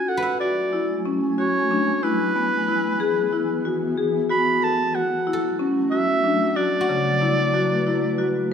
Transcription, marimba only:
0.08 A4
0.41 F#4
0.73 E4
1.05 C#4
1.38 F#4
1.71 D4
2.03 E4
2.36 B3
2.68 E4
3.00 G#4
3.33 E4
3.65 F#4
3.97 G#4
4.30 F#4
4.62 A4
4.95 F#4
5.27 E4
5.59 C#4
5.92 F#4
6.24 D4
6.56 F#4
6.89 C#3
7.21 E4
7.54 F#4
7.87 E4
8.18 F#4

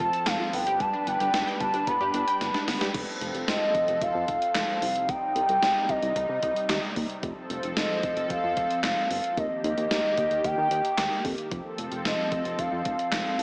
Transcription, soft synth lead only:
0.00 A5
0.27 F5
0.54 G5
0.81 A5
1.07 G5
1.61 A5
1.87 B5
3.48 D#5
4.02 F5
5.09 G5
5.89 D#5
7.77 D#5
8.31 F5
8.84 F5
9.11 F5
9.38 D#5
9.64 D#5
10.45 G5
12.05 D#5
12.59 F5

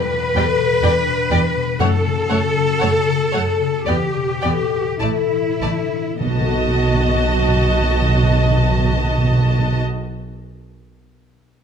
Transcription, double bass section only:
0.35 E2
0.82 E2
1.31 E2
1.79 F#2
2.30 F#2
2.81 F#2
3.33 F#2
3.87 E2
4.43 E2
5.01 A1
5.61 A1
6.21 B1

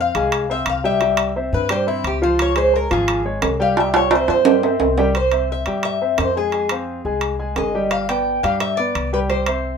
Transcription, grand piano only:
0.15 G#3 G#4 G#5
0.49 C4 C5 F5
0.84 G3 G4 G5
1.01 G3 G4 G5
1.36 C4 C5 E5
1.70 G3 G4 G5
1.87 C4 C5 E5
2.22 F3 F4 F5
2.56 G#3 G#4 C#5
2.91 F3 F4 F5
3.25 G#3 G#4 C#5
3.60 G3 G4 G5
3.77 G3 G4 G5
4.11 C4 C5 E5
4.46 G3 G4 G5
4.63 C4 C5 E5
4.98 G3 G4 G5
5.32 C4 C5 E5
5.67 G3 G4 G5
6.02 C4 C5 E5
6.37 G#3 G#4 G#5
6.53 G#3 G#4 G#5
6.71 C4 C5 F5
7.05 G#3 G#4 G#5
7.39 G#3 G#4 G#5
7.57 G#3 G#4 G#5
7.75 G3 G4 G5
8.09 B3 B4 D5
8.43 G3 G4 G5
8.79 B3 B4 D5
9.13 G3 G4 G5
9.29 G3 G4 G5
9.47 C4 C5 E5

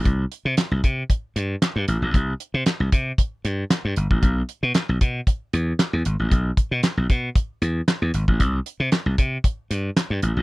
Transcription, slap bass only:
0.05 C2
0.45 C3
0.71 C2
0.84 C3
1.36 G2
1.76 G2
1.88 A1
2.02 A#1
2.14 C2
2.54 C3
2.80 C2
2.93 C3
3.45 G2
3.85 G2
3.97 G1
4.11 A1
4.23 B1
4.63 B2
4.89 B1
5.01 B2
5.53 E2
5.93 E2
6.06 G#1
6.19 A1
6.31 B1
6.71 B2
6.97 B1
7.10 B2
7.62 E2
8.02 E2
8.14 G#1
8.28 A1
8.40 C2
8.80 C3
9.06 C2
9.18 C3
9.71 G2
10.10 G2
10.23 A1
10.37 A#1

